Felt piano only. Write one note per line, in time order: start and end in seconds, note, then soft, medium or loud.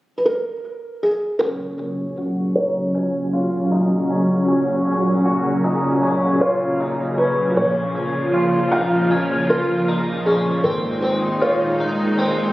0.18 0.26 B4 soft
0.26 1.05 A#4 medium
1.03 1.43 G#4 medium
1.39 2.59 A#4 medium
2.56 4.06 C#5 medium
6.41 7.21 C#5 medium
7.18 7.58 B4 medium
7.57 8.76 C#5 medium
8.72 9.45 F5 medium
9.50 10.29 A#4 medium
10.26 10.66 G#4 medium
10.64 11.00 A#4 medium
11.02 11.42 C5 medium
11.42 12.21 C#5 medium
12.19 12.53 C5 medium